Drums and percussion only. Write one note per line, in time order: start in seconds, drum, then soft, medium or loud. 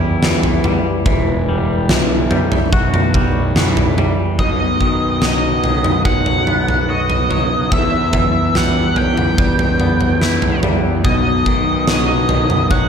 0.23 snare medium
0.23 mid tom medium
0.43 floor tom medium
0.64 mid tom medium
1.06 kick medium
1.06 floor tom medium
1.89 snare medium
1.89 floor tom medium
2.31 mid tom medium
2.52 floor tom medium
2.73 kick medium
2.94 mid tom medium
3.14 kick medium
3.14 floor tom medium
3.56 snare medium
3.56 mid tom medium
3.77 floor tom medium
3.98 mid tom medium
4.39 kick medium
4.39 floor tom medium
4.81 kick medium
5.22 snare medium
5.22 floor tom medium
5.64 floor tom medium
5.84 mid tom medium
6.05 kick medium
6.05 floor tom medium
6.26 floor tom medium
6.47 mid tom medium
6.68 floor tom medium
7.10 floor tom medium
7.31 floor tom medium
7.72 kick medium
7.72 floor tom medium
8.13 kick medium
8.13 floor tom medium
8.13 mid tom medium
8.55 snare medium
8.55 floor tom medium
8.96 floor tom medium
9.17 mid tom medium
9.38 kick medium
9.38 floor tom medium
9.59 floor tom medium
9.80 mid tom medium
10.01 floor tom medium
10.21 snare medium
10.42 floor tom medium
10.63 floor tom medium
10.63 mid tom medium
11.05 kick medium
11.05 floor tom medium
11.46 kick medium
11.88 snare medium
11.88 floor tom medium
12.29 floor tom medium
12.50 mid tom medium
12.71 kick medium
12.71 floor tom medium